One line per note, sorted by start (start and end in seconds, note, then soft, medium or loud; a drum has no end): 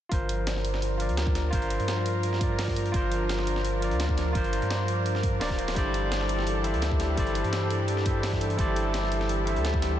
0.09 1.10 G1 loud
0.09 5.72 F3 medium
0.09 10.00 D4 medium
0.09 0.96 F4 medium
0.09 0.98 A#4 medium
0.09 5.72 A#4 medium
0.09 kick loud
0.09 closed hi-hat medium
0.14 0.99 C5 loud
0.29 closed hi-hat medium
0.47 snare loud
0.47 closed hi-hat medium
0.56 snare soft
0.65 closed hi-hat medium
0.74 snare soft
0.82 closed hi-hat medium
0.98 1.49 F4 medium
0.98 1.51 A#4 medium
0.98 closed hi-hat medium
1.02 1.52 D5 medium
1.09 1.51 D2 loud
1.09 closed hi-hat soft
1.17 snare loud
1.17 closed hi-hat medium
1.27 kick loud
1.35 snare soft
1.35 closed hi-hat medium
1.51 1.78 G1 loud
1.51 2.38 F4 medium
1.51 2.39 A#4 medium
1.51 kick loud
1.51 closed hi-hat medium
1.55 2.40 C5 loud
1.62 closed hi-hat soft
1.70 closed hi-hat medium
1.80 2.93 G2 medium
1.80 closed hi-hat soft
1.88 snare loud
1.88 closed hi-hat medium
2.06 closed hi-hat medium
2.23 closed hi-hat medium
2.33 snare soft
2.39 2.91 F4 medium
2.39 2.92 A#4 medium
2.39 kick loud
2.39 closed hi-hat medium
2.43 2.93 D5 medium
2.59 snare loud
2.59 closed hi-hat medium
2.59 open hi-hat medium
2.68 kick medium
2.68 snare soft
2.76 closed hi-hat medium
2.86 closed hi-hat soft
2.92 3.93 G1 loud
2.92 3.79 F4 medium
2.92 3.80 A#4 medium
2.92 kick loud
2.92 closed hi-hat medium
2.96 3.81 C5 loud
3.12 closed hi-hat medium
3.29 snare loud
3.29 closed hi-hat medium
3.39 snare soft
3.47 closed hi-hat medium
3.56 snare soft
3.65 closed hi-hat medium
3.80 4.32 F4 medium
3.80 4.33 A#4 medium
3.80 closed hi-hat medium
3.84 4.34 D5 medium
3.91 4.34 D2 loud
3.91 closed hi-hat soft
4.00 snare loud
4.00 closed hi-hat medium
4.09 kick loud
4.17 snare soft
4.17 closed hi-hat medium
4.33 4.60 G1 loud
4.33 5.20 F4 medium
4.33 5.21 A#4 medium
4.33 kick loud
4.33 closed hi-hat medium
4.37 5.22 C5 loud
4.44 closed hi-hat soft
4.53 closed hi-hat medium
4.62 5.40 G2 medium
4.62 closed hi-hat soft
4.71 snare loud
4.71 closed hi-hat medium
4.88 closed hi-hat medium
5.06 closed hi-hat medium
5.15 snare soft
5.23 kick loud
5.23 closed hi-hat medium
5.40 5.75 D1 medium
5.40 5.56 F4 medium
5.40 5.57 A#4 medium
5.40 5.57 D5 loud
5.40 snare loud
5.40 closed hi-hat medium
5.40 open hi-hat medium
5.50 kick medium
5.50 snare soft
5.58 5.67 F4 medium
5.58 5.67 A#4 medium
5.58 5.68 C5 medium
5.58 closed hi-hat medium
5.68 snare medium
5.68 open hi-hat medium
5.74 6.75 G1 medium
5.74 10.00 E3 medium
5.74 6.61 G3 loud
5.74 6.62 E4 medium
5.74 10.00 G4 medium
5.74 6.62 A4 medium
5.74 10.00 A4 medium
5.74 6.63 C5 medium
5.74 kick loud
5.74 closed hi-hat medium
5.78 6.64 D5 loud
5.94 closed hi-hat medium
6.12 snare loud
6.12 closed hi-hat medium
6.21 snare soft
6.29 closed hi-hat medium
6.39 snare soft
6.47 closed hi-hat medium
6.62 7.14 G3 medium
6.62 7.15 E4 medium
6.62 7.15 A4 medium
6.62 7.16 C5 medium
6.62 closed hi-hat medium
6.66 7.16 E5 medium
6.74 7.16 D2 medium
6.74 closed hi-hat soft
6.82 snare loud
6.82 closed hi-hat medium
6.91 kick loud
7.00 snare soft
7.00 closed hi-hat medium
7.15 7.43 G1 loud
7.15 8.03 G3 medium
7.15 8.03 E4 medium
7.15 8.04 A4 medium
7.15 8.04 C5 medium
7.15 kick loud
7.15 closed hi-hat medium
7.19 8.05 D5 loud
7.27 closed hi-hat soft
7.35 closed hi-hat medium
7.44 8.57 G2 medium
7.44 closed hi-hat soft
7.53 snare loud
7.53 closed hi-hat medium
7.70 closed hi-hat medium
7.88 closed hi-hat medium
7.97 snare soft
8.04 8.55 G3 medium
8.04 8.56 E4 medium
8.04 8.57 A4 medium
8.04 8.57 C5 medium
8.04 kick loud
8.04 closed hi-hat medium
8.08 8.58 E5 medium
8.23 snare loud
8.23 closed hi-hat medium
8.23 open hi-hat medium
8.32 kick medium
8.32 snare soft
8.41 closed hi-hat medium
8.50 closed hi-hat soft
8.57 9.57 G1 loud
8.57 9.43 G3 medium
8.57 9.44 E4 medium
8.57 9.45 A4 medium
8.57 9.45 C5 medium
8.57 kick loud
8.57 closed hi-hat medium
8.61 9.46 D5 loud
8.76 closed hi-hat medium
8.94 snare loud
8.94 closed hi-hat medium
9.03 snare medium
9.12 closed hi-hat medium
9.21 snare soft
9.29 closed hi-hat medium
9.45 9.97 G3 medium
9.45 9.97 E4 medium
9.45 9.98 A4 medium
9.45 9.98 C5 medium
9.45 closed hi-hat medium
9.49 9.99 E5 medium
9.56 9.98 D2 medium
9.56 closed hi-hat soft
9.65 snare loud
9.65 closed hi-hat medium
9.74 kick medium
9.82 snare soft
9.82 closed hi-hat medium